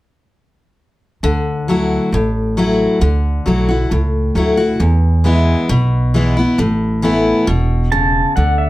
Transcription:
1.23 upright bass D2, steel-string acoustic guitar D3
1.68 steel-string acoustic guitar F#3 A3 E4 F#4
2.12 upright bass A1, steel-string acoustic guitar A2
2.57 steel-string acoustic guitar F#3 A3 E4 F#4
3.01 upright bass D2, steel-string acoustic guitar D3
3.46 upright bass B1, steel-string acoustic guitar F#3 A3 E4 F#4
3.69 steel-string acoustic guitar E4 F#4
3.91 upright bass C#2, steel-string acoustic guitar A2
4.35 upright bass D2, steel-string acoustic guitar F#3 A3 E4 F#4
4.57 steel-string acoustic guitar E4 F#4
4.80 upright bass E2, steel-string acoustic guitar E2
5.24 steel-string acoustic guitar E3 G#3 B3 E4
5.69 upright bass B1, steel-string acoustic guitar B2
6.14 steel-string acoustic guitar E3 G#3 B3 E4
6.37 steel-string acoustic guitar B3 E4
6.58 upright bass A1, steel-string acoustic guitar A2
7.02 steel-string acoustic guitar E3 A3 B3 E4
7.47 upright bass E1, steel-string acoustic guitar B2
7.92 steel-string acoustic guitar C#3, pedal steel guitar A5
8.36 upright bass D2, steel-string acoustic guitar D3, pedal steel guitar F#5
8.58 pedal steel guitar E5

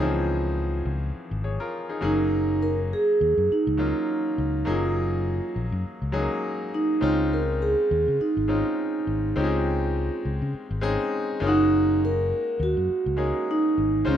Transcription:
Already playing: fingered electric bass C#2, grand piano E3 F3 C4 C#4 D#4 F#4 G#4
0.00 grand piano F3, vibraphone F4
0.85 fingered electric bass C#2
1.15 muted fingered electric bass stroke
1.31 fingered electric bass G#1
1.44 grand piano G#4 C#5
1.60 grand piano F4 A#4
1.89 grand piano D#4 G#4
2.01 fingered electric bass F#1, grand piano F#3 A#3 C#4 D#4 G#4, vibraphone D#4
2.63 vibraphone A#4
2.93 vibraphone G#4
3.21 fingered electric bass D#2
3.38 fingered electric bass F#2
3.50 vibraphone D#4, muted fingered electric bass stroke
3.67 fingered electric bass C#2
3.77 grand piano F#3 A#3 C#4 D#4 F4
4.38 fingered electric bass C#2
4.65 fingered electric bass F#1, grand piano F#3 A#3 C#4 D#4 G#4
4.69 vibraphone F4
5.56 fingered electric bass A#1
5.72 fingered electric bass F#2
5.85 muted fingered electric bass stroke
6.02 fingered electric bass C#2
6.12 grand piano F#3 G#3 C#4 D#4 G#4
6.19 grand piano A#3
6.74 vibraphone D#4
7.01 fingered electric bass C#2, grand piano G#3 C4 C#4 D#4 F4
7.33 vibraphone A#4
7.62 vibraphone G#4
7.91 fingered electric bass D#2
8.08 fingered electric bass C#3
8.20 vibraphone D#4, muted fingered electric bass stroke
8.37 fingered electric bass G#1
8.48 grand piano G#3 C4 C#4 D#4 F4
9.07 fingered electric bass G#1
9.36 fingered electric bass C#2, grand piano G#3 C4 C#4 D#4 G4
9.40 vibraphone F4, grand piano G#4
10.25 fingered electric bass C#2
10.42 fingered electric bass C#3
10.54 muted fingered electric bass stroke
10.71 fingered electric bass G#1
10.81 grand piano G#3 C4 C#4 D#4 G#4
11.40 fingered electric bass F#1, grand piano G#3 A#3 C#4 D#4 F4
11.47 vibraphone D#4, grand piano F#4
12.05 vibraphone A#4
12.60 fingered electric bass D#2, vibraphone F#4
12.77 fingered electric bass F#2
12.89 muted fingered electric bass stroke
13.06 fingered electric bass C#2
13.17 grand piano G#3 A#3 C#4 D#4 G#4
13.51 vibraphone D#4
13.78 fingered electric bass G#1
14.05 fingered electric bass C#2, grand piano G#3 C#4 D#4 F4 C5
14.09 vibraphone C#4

